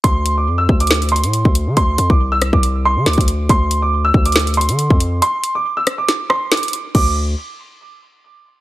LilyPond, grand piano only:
\new Staff \with { instrumentName = "Grand piano" } { \time 4/4 \key d \minor \tempo 4 = 139 c'''8. d'''8 e'''8 d'''8. c'''4. | c'''8. d'''8 e'''8 d'''8. c'''8 d'''4 | c'''8. d'''8 e'''8 d'''8. c'''4. | c'''8. d'''8 e'''8 d'''8. c'''8 d'''4 |
d'''8 r2. r8 | }